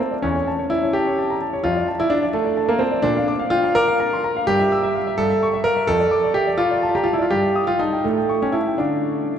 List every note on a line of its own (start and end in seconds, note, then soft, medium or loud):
0.00 0.13 C4 medium
0.00 0.12 A5 soft
0.11 0.23 D5 medium
0.22 0.35 E2 medium
0.22 0.51 C#4 medium
0.35 0.48 C#5 medium
0.47 0.60 A5 medium
0.59 0.71 C#5 medium
0.70 0.94 E4 loud
0.70 0.83 D5 soft
0.83 0.95 C#5 medium
0.93 1.36 G4 loud
0.93 1.07 A5 medium
1.07 1.19 C#5 medium
1.18 1.30 A5 medium
1.30 1.42 A#5 medium
1.42 1.54 A5 medium
1.53 1.65 C#5 medium
1.64 1.76 F2 medium
1.64 1.85 F4 loud
1.76 1.89 D5 medium
1.88 2.00 A5 medium
2.00 2.11 E4 loud
2.00 2.12 D5 medium
2.10 2.24 D4 loud
2.10 2.23 E5 medium
2.23 2.35 D5 medium
2.33 2.65 A3 loud
2.33 2.46 A5 medium
2.45 2.58 D5 medium
2.57 2.69 A5 medium
2.69 2.80 A#3 loud
2.69 2.81 A#5 medium
2.79 3.03 C4 loud
2.79 2.93 A5 medium
2.92 3.04 D5 medium
3.02 3.15 A#2 medium
3.02 3.32 D4 loud
3.17 3.29 F5 medium
3.28 3.41 D6 medium
3.39 3.53 F5 medium
3.50 3.73 F4 loud
3.50 3.64 G5 medium
3.64 3.77 F5 medium
3.75 4.43 A#4 loud
3.75 3.89 D6 medium
3.88 4.01 F5 medium
4.00 4.13 A#5 medium
4.13 4.25 C6 medium
4.24 4.37 A#5 medium
4.37 4.48 F5 medium
4.47 4.59 G2 medium
4.47 5.18 G4 loud
4.59 4.72 E5 medium
4.72 4.84 E6 medium
4.83 4.96 E5 medium
4.96 5.07 F5 medium
5.07 5.19 E5 medium
5.18 5.30 G2 medium
5.18 5.46 A4 loud
5.30 5.43 E5 medium
5.43 5.55 C#6 medium
5.54 5.66 E5 medium
5.64 5.88 A#4 loud
5.64 5.77 F5 medium
5.77 5.88 E5 medium
5.87 6.00 F2 medium
5.87 6.31 A4 loud
6.00 6.12 D5 medium
6.11 6.24 D6 medium
6.24 6.36 D5 medium
6.34 6.49 G4 loud
6.34 6.47 E5 medium
6.47 6.60 D5 medium
6.58 6.93 F4 loud
6.58 6.71 D6 medium
6.71 6.84 D5 medium
6.83 6.95 A5 medium
6.95 7.04 G4 loud
6.95 7.07 A#5 medium
7.04 7.13 F4 medium
7.04 7.19 A5 medium
7.13 7.22 E4 medium
7.19 7.31 F4 medium
7.19 7.31 D5 medium
7.31 7.43 G2 medium
7.31 7.63 G4 loud
7.56 7.68 D#6 medium
7.67 7.79 F4 loud
7.67 7.80 G5 medium
7.79 8.04 D#4 loud
7.79 7.92 A5 soft
7.93 8.05 G5 medium
8.04 8.17 A2 medium
8.04 8.38 A3 medium
8.18 8.30 G5 medium
8.29 8.42 C#6 medium
8.42 8.55 C#4 medium
8.42 8.55 G5 medium
8.52 8.76 E4 medium
8.52 8.67 A5 soft
8.67 8.80 G5 medium
8.78 9.32 D3 medium
8.78 9.39 D4 medium
8.78 9.39 F5 soft
8.78 9.39 D6 soft